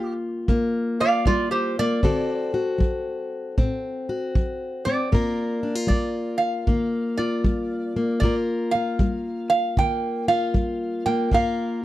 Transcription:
0.00 0.42 G3 medium
0.00 0.48 A#3 medium
0.00 0.99 F4 medium
0.00 0.13 G4 medium
0.48 1.20 D3 medium
0.48 1.77 A#3 medium
0.48 kick medium
1.00 2.01 F4 medium
1.00 1.25 D5 medium
1.00 1.25 F5 medium
1.26 1.99 G3 medium
1.26 1.50 F4 medium
1.26 1.51 D5 medium
1.26 kick medium
1.51 1.75 G4 medium
1.51 1.76 C5 medium
1.79 2.03 A#3 medium
1.79 2.53 D5 loud
2.03 2.75 D3 medium
2.03 3.57 C4 medium
2.03 2.53 F#4 medium
2.03 5.10 A4 medium
2.03 kick medium
2.54 4.08 F#4 medium
2.78 3.51 F#3 medium
2.78 kick medium
3.58 4.30 A2 medium
3.58 4.85 C4 medium
3.58 kick medium
4.09 5.09 F#4 medium
4.35 5.07 F#3 medium
4.35 kick medium
4.85 5.09 C4 medium
4.85 5.87 D5 medium
5.12 5.84 G2 medium
5.12 6.67 A#3 medium
5.12 5.63 F4 medium
5.12 8.24 A#4 medium
5.12 kick medium
5.63 5.75 D4 medium
5.75 7.17 F4 soft
5.87 6.60 G3 medium
5.87 6.41 D5 medium
5.87 kick medium
6.38 7.19 F5 medium
6.67 7.39 D3 medium
6.67 7.96 A#3 medium
6.67 kick medium
7.18 8.23 F4 medium
7.18 8.19 D5 medium
7.44 8.16 G3 medium
7.44 kick medium
7.96 8.23 A#3 medium
8.20 8.95 G2 medium
8.20 9.78 A#3 medium
8.20 8.75 F4 medium
8.20 8.34 D5 medium
8.20 kick medium
8.25 11.34 A#4 medium
8.71 10.28 F4 medium
8.71 9.49 F5 medium
8.99 9.72 G3 medium
8.99 kick medium
9.50 9.77 F5 medium
9.77 10.49 D3 medium
9.77 11.06 A#3 medium
9.77 10.28 G5 loud
9.77 kick medium
10.28 11.34 F4 medium
10.28 11.05 F5 medium
10.54 11.26 G3 medium
10.54 kick medium
11.06 11.32 A#3 medium
11.06 11.32 G5 medium
11.31 11.85 G2 medium
11.31 11.85 A#3 medium
11.31 11.83 F4 medium
11.31 11.85 A#4 medium
11.31 11.85 F5 medium
11.31 kick medium

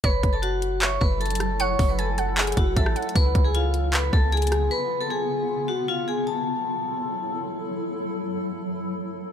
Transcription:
0.04 0.23 F#1 loud
0.04 3.12 F#3 medium
0.04 3.12 E4 medium
0.04 3.12 A4 medium
0.04 0.31 B4 loud
0.04 0.78 C#5 loud
0.04 0.32 B5 medium
0.04 kick loud
0.04 closed hi-hat medium
0.23 0.98 F#1 loud
0.23 kick loud
0.23 closed hi-hat medium
0.33 0.40 A4 medium
0.33 0.41 A5 medium
0.42 0.79 F#4 medium
0.42 0.80 F#5 medium
0.42 closed hi-hat medium
0.62 closed hi-hat medium
0.82 0.97 C#5 medium
0.82 1.18 E5 medium
0.82 0.97 C#6 medium
0.82 clap loud
0.82 closed hi-hat medium
1.01 1.76 F#1 loud
1.01 1.16 B4 medium
1.01 1.16 B5 medium
1.01 kick loud
1.21 1.57 A4 medium
1.21 1.58 A5 medium
1.21 closed hi-hat medium
1.26 closed hi-hat medium
1.30 closed hi-hat medium
1.35 closed hi-hat medium
1.40 cross-stick medium
1.40 closed hi-hat medium
1.60 1.87 C#5 loud
1.60 1.97 F#5 loud
1.60 1.88 C#6 medium
1.60 closed hi-hat medium
1.79 2.54 F#1 loud
1.79 kick loud
1.79 open hi-hat medium
1.88 1.96 B4 medium
1.88 1.97 B5 medium
1.99 2.35 A4 medium
1.99 2.17 G#5 medium
1.99 2.36 A5 medium
1.99 closed hi-hat medium
2.18 2.73 F#5 medium
2.18 closed hi-hat medium
2.37 2.52 G#4 medium
2.37 2.53 G#5 medium
2.37 clap loud
2.37 closed hi-hat soft
2.42 closed hi-hat medium
2.47 closed hi-hat medium
2.52 closed hi-hat medium
2.57 2.76 F#1 loud
2.57 2.72 F#4 medium
2.57 2.73 F#5 medium
2.57 kick loud
2.57 closed hi-hat medium
2.76 2.95 A1 loud
2.76 3.13 A4 medium
2.76 2.95 E5 medium
2.76 3.14 A5 medium
2.76 kick loud
2.76 closed hi-hat medium
2.86 cross-stick loud
2.96 3.14 F#5 medium
2.96 closed hi-hat medium
3.02 closed hi-hat medium
3.09 closed hi-hat medium
3.15 3.34 C#2 loud
3.15 6.24 C#3 medium
3.15 6.24 B3 medium
3.15 6.24 F4 medium
3.15 3.43 B4 loud
3.15 3.44 B5 medium
3.15 kick loud
3.15 closed hi-hat medium
3.35 4.10 C#2 loud
3.35 kick loud
3.35 closed hi-hat medium
3.44 3.52 G#4 medium
3.44 3.52 G#5 medium
3.55 3.91 F4 medium
3.55 3.92 F5 medium
3.55 closed hi-hat medium
3.74 closed hi-hat medium
3.93 4.08 B4 medium
3.93 4.09 B5 medium
3.93 clap loud
3.93 closed hi-hat medium
4.13 4.69 C#2 loud
4.13 4.28 A4 medium
4.13 4.28 A5 medium
4.13 kick loud
4.32 4.69 G#4 medium
4.32 4.69 G#5 medium
4.32 closed hi-hat medium
4.37 closed hi-hat medium
4.42 closed hi-hat medium
4.47 closed hi-hat medium
4.52 cross-stick medium
4.52 closed hi-hat medium
4.71 4.99 B4 loud
4.71 4.99 B5 medium
5.01 5.08 A4 medium
5.01 5.09 A5 medium
5.10 5.65 G#4 medium
5.10 5.66 G#5 medium
5.68 5.83 F#4 medium
5.68 5.84 F#5 medium
5.88 6.03 F4 medium
5.88 6.04 F5 medium
6.08 6.23 G#4 medium
6.08 6.23 G#5 medium
6.27 9.32 F#3 medium
6.27 9.32 E4 medium
6.27 9.32 A4 medium
6.27 7.40 A5 medium

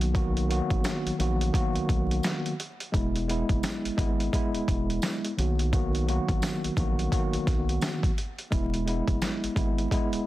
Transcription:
0.00 0.61 B1 loud
0.00 0.12 D#3 medium
0.00 0.12 F#3 medium
0.00 0.13 A#3 medium
0.00 0.13 B3 medium
0.00 0.13 F#4 medium
0.00 closed hi-hat soft
0.13 0.47 D#3 loud
0.13 0.47 F#3 medium
0.13 0.47 A#3 medium
0.13 0.48 B3 medium
0.13 0.48 F#4 loud
0.13 kick loud
0.13 closed hi-hat medium
0.37 closed hi-hat soft
0.49 1.14 D#3 medium
0.49 1.15 F#3 medium
0.49 1.15 A#3 medium
0.49 1.15 B3 medium
0.49 1.16 F#4 loud
0.49 closed hi-hat medium
0.70 0.83 G#1 medium
0.70 kick medium
0.70 closed hi-hat soft
0.84 snare loud
0.84 closed hi-hat loud
0.84 tambourine medium
1.06 1.11 A#1 medium
1.06 closed hi-hat medium
1.18 1.51 A#1 medium
1.18 1.52 D#3 loud
1.18 1.52 F#3 medium
1.18 1.52 A#3 medium
1.18 1.53 B3 medium
1.18 1.53 F#4 loud
1.18 closed hi-hat medium
1.41 closed hi-hat soft
1.53 2.51 D#3 medium
1.53 2.52 F#3 medium
1.53 2.52 A#3 loud
1.53 2.52 B3 medium
1.53 2.53 F#4 loud
1.53 kick loud
1.53 closed hi-hat loud
1.76 1.81 B1 medium
1.76 closed hi-hat medium
1.89 2.20 B1 medium
1.89 kick loud
1.89 closed hi-hat medium
2.11 closed hi-hat medium
2.23 snare loud
2.23 closed hi-hat medium
2.23 tambourine medium
2.46 closed hi-hat medium
2.60 closed hi-hat medium
2.80 closed hi-hat soft
2.92 3.44 E1 loud
2.92 3.26 G#3 loud
2.92 3.26 B3 medium
2.92 3.27 E4 loud
2.92 kick loud
2.92 closed hi-hat medium
3.16 closed hi-hat soft
3.28 3.94 G#3 medium
3.28 3.94 B3 medium
3.28 3.95 E4 loud
3.28 closed hi-hat medium
3.49 3.62 F#1 medium
3.49 kick medium
3.49 closed hi-hat soft
3.63 snare loud
3.63 closed hi-hat loud
3.63 tambourine medium
3.85 3.90 G#1 soft
3.85 closed hi-hat medium
3.97 4.29 G#1 medium
3.97 4.30 G#3 loud
3.97 4.31 B3 loud
3.97 4.32 E4 loud
3.97 kick loud
3.97 closed hi-hat medium
4.20 closed hi-hat soft
4.32 5.31 G#3 loud
4.32 5.31 B3 medium
4.32 5.32 E4 loud
4.32 kick medium
4.32 closed hi-hat loud
4.54 4.60 E1 medium
4.54 closed hi-hat medium
4.68 4.99 E1 loud
4.68 kick loud
4.68 closed hi-hat medium
4.90 closed hi-hat medium
5.02 snare loud
5.02 closed hi-hat medium
5.02 tambourine medium
5.25 closed hi-hat medium
5.37 6.19 B1 loud
5.37 5.70 D#3 medium
5.37 5.70 F#3 medium
5.37 5.71 A#3 medium
5.37 5.71 B3 medium
5.37 5.71 F#4 medium
5.37 closed hi-hat medium
5.59 closed hi-hat soft
5.72 6.05 D#3 loud
5.72 6.05 F#3 medium
5.72 6.06 A#3 medium
5.72 6.06 B3 loud
5.72 6.06 F#4 loud
5.72 kick loud
5.72 closed hi-hat medium
5.95 closed hi-hat soft
6.07 6.73 D#3 medium
6.07 6.73 F#3 medium
6.07 6.73 A#3 medium
6.07 6.74 B3 medium
6.07 6.74 F#4 loud
6.07 closed hi-hat medium
6.28 6.41 G#1 medium
6.28 kick medium
6.28 closed hi-hat soft
6.42 snare loud
6.42 closed hi-hat loud
6.42 tambourine medium
6.64 6.70 A#1 soft
6.64 closed hi-hat medium
6.77 7.08 A#1 loud
6.77 7.10 D#3 loud
6.77 7.10 F#3 medium
6.77 7.11 A#3 medium
6.77 7.11 B3 medium
6.77 7.11 F#4 loud
6.77 kick loud
6.77 closed hi-hat medium
6.99 closed hi-hat medium
7.11 8.10 D#3 medium
7.11 8.10 F#3 medium
7.11 8.10 A#3 loud
7.11 8.11 B3 medium
7.11 8.11 F#4 loud
7.11 kick medium
7.11 closed hi-hat loud
7.33 7.39 B1 soft
7.33 closed hi-hat medium
7.47 7.78 B1 medium
7.47 kick loud
7.47 snare soft
7.47 closed hi-hat medium
7.69 closed hi-hat medium
7.81 snare loud
7.81 closed hi-hat medium
7.81 tambourine medium
8.03 kick loud
8.03 closed hi-hat medium
8.18 closed hi-hat medium
8.38 closed hi-hat soft
8.51 9.02 E1 loud
8.51 8.84 G#3 loud
8.51 8.85 B3 medium
8.51 8.85 E4 loud
8.51 kick loud
8.51 closed hi-hat medium
8.74 closed hi-hat soft
8.86 9.52 G#3 medium
8.86 9.52 B3 medium
8.86 9.53 E4 loud
8.86 closed hi-hat medium
9.08 9.20 F#1 medium
9.08 kick medium
9.08 closed hi-hat soft
9.22 snare loud
9.22 closed hi-hat loud
9.22 tambourine medium
9.43 9.49 G#1 medium
9.43 closed hi-hat medium
9.55 9.87 G#1 loud
9.55 9.89 G#3 medium
9.55 9.89 B3 loud
9.55 9.90 E4 loud
9.55 kick loud
9.55 closed hi-hat medium
9.78 closed hi-hat soft
9.91 10.27 G#3 loud
9.91 10.27 B3 medium
9.91 10.27 E4 loud
9.91 kick medium
9.91 closed hi-hat loud
10.13 10.18 E1 medium
10.13 closed hi-hat medium

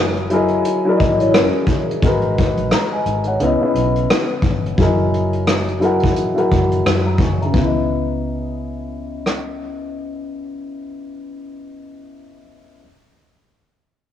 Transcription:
0.00 0.61 F#1 medium
0.00 0.30 F#3 medium
0.00 0.31 E4 medium
0.00 0.32 G#4 medium
0.00 0.34 A#4 medium
0.00 0.35 D#5 loud
0.00 2.04 F#5 soft
0.00 2.04 B5 medium
0.17 closed hi-hat soft
0.30 0.62 F#3 medium
0.30 0.62 E4 medium
0.30 0.63 G#4 medium
0.30 0.64 A#4 medium
0.30 closed hi-hat medium
0.35 0.64 D#5 loud
0.48 closed hi-hat soft
0.65 closed hi-hat medium
0.85 1.57 F#3 medium
0.85 1.57 E4 medium
0.85 1.58 G#4 medium
0.85 1.59 A#4 medium
0.90 0.93 D5 medium
0.97 1.47 G#1 medium
0.97 1.63 D#5 loud
0.97 kick medium
0.97 closed hi-hat medium
1.20 1.33 E4 medium
1.20 1.33 C#5 medium
1.20 closed hi-hat soft
1.34 1.53 C#4 medium
1.34 1.53 A#4 medium
1.34 cross-stick loud
1.34 closed hi-hat medium
1.55 2.01 G#4 medium
1.67 kick medium
1.67 closed hi-hat medium
1.91 closed hi-hat soft
2.02 2.50 G#1 medium
2.02 2.66 G#3 medium
2.02 2.66 F#4 medium
2.02 2.67 A#4 medium
2.02 kick loud
2.02 closed hi-hat medium
2.07 2.68 B4 medium
2.22 closed hi-hat soft
2.38 kick medium
2.38 closed hi-hat medium
2.57 2.69 A#1 medium
2.57 closed hi-hat soft
2.71 2.92 D#5 medium
2.71 2.92 A#5 medium
2.71 cross-stick medium
2.71 closed hi-hat medium
2.93 3.25 D#5 medium
2.93 3.25 G#5 medium
3.06 3.35 G#1 medium
3.06 closed hi-hat medium
3.24 3.60 F#5 medium
3.24 closed hi-hat soft
3.28 3.60 C#5 medium
3.40 3.57 C#2 medium
3.40 3.56 C#3 medium
3.40 3.57 B3 medium
3.40 3.58 E4 medium
3.40 closed hi-hat medium
3.45 3.59 D#5 medium
3.60 4.32 C#3 medium
3.60 4.33 B3 medium
3.60 4.34 E4 medium
3.60 muted fingered electric bass stroke soft
3.65 4.35 D#5 medium
3.74 4.04 B1 medium
3.74 closed hi-hat medium
3.96 closed hi-hat soft
4.10 cross-stick loud
4.10 closed hi-hat medium
4.42 4.73 G1 medium
4.42 kick loud
4.42 closed hi-hat medium
4.66 closed hi-hat soft
4.78 6.16 F#1 medium
4.78 5.41 F#3 medium
4.78 5.42 E4 medium
4.78 5.42 G#4 medium
4.78 5.43 A#4 medium
4.78 kick loud
4.78 closed hi-hat medium
4.82 5.44 D#5 medium
5.14 closed hi-hat medium
5.33 closed hi-hat soft
5.47 cross-stick medium
5.47 closed hi-hat medium
5.68 closed hi-hat soft
5.80 6.12 F#3 medium
5.80 6.13 E4 medium
5.80 6.14 G#4 medium
5.80 6.14 A#4 medium
5.80 closed hi-hat medium
5.85 6.15 F#5 medium
6.00 kick medium
6.00 closed hi-hat soft
6.16 6.46 G#1 medium
6.16 closed hi-hat medium
6.34 7.07 F#3 medium
6.34 7.08 E4 medium
6.34 7.08 G#4 medium
6.34 7.09 A#4 medium
6.34 closed hi-hat soft
6.39 6.87 F#5 medium
6.51 6.81 F#1 medium
6.51 kick medium
6.51 closed hi-hat medium
6.71 closed hi-hat soft
6.85 7.20 F#2 medium
6.85 cross-stick loud
6.85 closed hi-hat medium
7.06 7.19 A#5 soft
7.06 7.19 E6 medium
7.18 7.49 F#1 medium
7.18 7.39 G#5 medium
7.18 7.39 C#6 medium
7.18 kick loud
7.18 closed hi-hat medium
7.42 11.71 C#3 medium
7.42 7.74 E5 soft
7.42 7.73 A#5 medium
7.42 closed hi-hat soft
7.52 11.76 C#2 medium
7.52 11.75 B3 medium
7.52 kick medium
7.59 11.78 E4 medium
7.65 11.81 D#5 medium
9.26 cross-stick medium

